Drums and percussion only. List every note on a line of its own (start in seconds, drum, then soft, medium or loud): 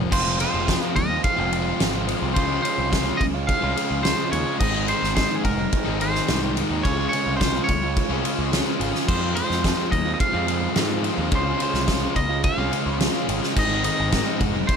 0.12 kick loud
0.12 crash loud
0.40 ride medium
0.68 kick medium
0.68 snare loud
0.68 ride loud
0.96 kick medium
0.96 ride medium
1.24 kick loud
1.24 ride medium
1.53 ride medium
1.80 snare loud
1.80 ride loud
2.08 ride medium
2.36 kick loud
2.36 ride medium
2.65 ride medium
2.93 kick medium
2.93 snare loud
2.93 ride loud
3.21 kick medium
3.21 ride medium
3.49 kick loud
3.49 ride medium
3.77 ride medium
4.05 snare loud
4.05 ride loud
4.33 ride medium
4.60 kick loud
4.60 crash loud
4.88 ride medium
5.03 snare soft
5.16 kick medium
5.16 snare loud
5.16 ride loud
5.45 kick medium
5.45 ride medium
5.73 kick loud
5.73 ride loud
6.01 ride medium
6.15 snare soft
6.28 snare loud
6.28 ride medium
6.57 ride medium
6.85 kick loud
6.85 ride loud
7.13 ride medium
7.41 kick medium
7.41 snare loud
7.41 ride loud
7.68 kick medium
7.68 ride medium
7.96 kick loud
7.96 ride loud
8.25 ride medium
8.53 snare loud
8.53 ride loud
8.81 ride medium
8.95 snare soft
9.09 kick loud
9.09 crash medium
9.36 ride medium
9.51 snare soft
9.64 kick medium
9.64 snare loud
9.64 ride loud
9.92 kick medium
9.92 ride medium
10.20 kick loud
10.20 ride loud
10.48 ride medium
10.76 snare loud
10.76 ride medium
11.04 ride medium
11.32 kick loud
11.32 ride medium
11.60 ride medium
11.74 snare soft
11.88 kick medium
11.88 snare loud
11.88 ride loud
12.16 kick medium
12.16 ride medium
12.44 kick loud
12.44 ride medium
12.73 ride medium
13.00 snare loud
13.00 ride loud
13.29 ride medium
13.43 snare soft
13.56 kick loud
13.56 crash loud
13.84 ride medium
14.12 kick medium
14.12 snare loud
14.12 ride loud
14.40 kick medium
14.40 ride medium
14.69 kick loud
14.69 ride medium